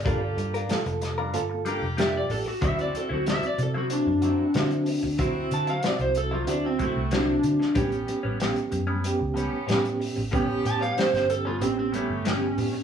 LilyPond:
<<
  \new Staff \with { instrumentName = "Electric slide guitar" } { \time 4/4 \key d \mixolydian \tempo 4 = 93 d''4 r2 e''16 d''16 a'16 fis'16 | e''16 d''16 a'16 fis'16 e''16 d''16 a'16 fis'16 d'2 | r8 a''16 f''16 d''16 c''16 a'16 f'16 d'16 c'16 a8 d'4 | r1 |
r8 a''16 f''16 c''16 c''16 a'16 f'16 c'16 c'16 a8 cis'4 | }
  \new Staff \with { instrumentName = "Horn section" } { \time 4/4 \key d \mixolydian <bes f' g'>4 r4. <bes f' g'>8. r8. | <c' e' fis'>4 r4. <c' e' fis'>8. r8. | <c' e' fis'>4 r4. <c' e' fis'>8. r8. | <b cis' g'>4 r4. <b cis' g'>8. r8. |
<b cis' g'>4 r4. <b cis' g'>8. r8. | }
  \new Staff \with { instrumentName = "Reed electric piano" } { \time 4/4 \key d \mixolydian <bes f' a'>4 <bes f' a'>4 <bes f' a'>4 <bes f' g'>4 | <c' e' fis'>4 <c' e' fis'>4 <c' e' fis'>4 <c' e' fis'>4 | <c' e' fis'>4 <c' e' fis'>4 <c' e' fis'>4 <c' e' fis'>4 | <b cis' g'>4 <b cis' g'>4 <b cis' g'>4 <b cis' g'>4 |
<b cis' g'>4 <b cis' g'>4 <b cis' g'>4 <b cis' g'>4 | }
  \new Staff \with { instrumentName = "Clean electric guitar" } { \time 4/4 \key d \mixolydian <g d' f' bes'>16 r8 <d' f' bes'>16 r8. <g d' f' bes'>16 r8 <g d' f' bes'>16 r16 <g d' f' bes'>16 r8. | <d fis c' e'>16 r8 <fis c' e'>16 r8. <d fis c' e'>16 r8 <d fis c' e'>16 r16 <d fis c' e'>16 r8. | <d fis c' e'>16 r8 <fis c' e'>16 r8. <d fis c' e'>16 r8 <d fis c' e'>16 r16 <d fis c' e'>16 r8. | <a, g b cis'>16 r8 <g b cis'>16 r8. <a, g b cis'>16 r8 <a, g b cis'>16 r16 <a, g b cis'>16 r8. |
<a, g b cis'>16 r8 <g b cis'>16 r8. <a, g b cis'>16 r8 <a, g b cis'>16 r16 <a, g b cis'>16 r8. | }
  \new Staff \with { instrumentName = "Fingered electric bass" } { \clef bass \time 4/4 \key d \mixolydian g,,8 g,8 r16 f,,8. g,,8. f,,8. a,,16 r16 | d,8 r16 d,8 r16 c8. fis,8 r16 d8. d,16~ | d,8 d8 r16 c,8. d,8. c,8. d16 r16 | a,,8 r16 a,,8 r16 fis,8. cis,8 r16 a,8. a,,16~ |
a,,8 a,8 r16 g,,8. a,,8. g,,8. a,16 r16 | }
  \new DrumStaff \with { instrumentName = "Drums" } \drummode { \time 4/4 <hh bd>8 hh16 hh16 <hh sn>16 hh16 <hh sn>8 hh8 hh8 <hh sn>8 hho8 | <hh bd>16 hh16 hh8 <hh sn>16 hh16 hh8 hh8 hh8 <hh sn>16 hh16 hho8 | <hh bd>8 hh16 hh16 <hh sn>16 hh16 hh8 hh8 <hh bd>8 <hh sn>8 hh16 sn16 | <hh bd>16 hh16 hh8 <hh sn>16 hh16 hh8 hh8 hh8 <hh sn>16 hh16 hho8 |
<hh bd>8 hh16 hh16 <hh sn>16 <hh sn>16 hh8 hh8 hh8 <hh sn>8 hho8 | }
>>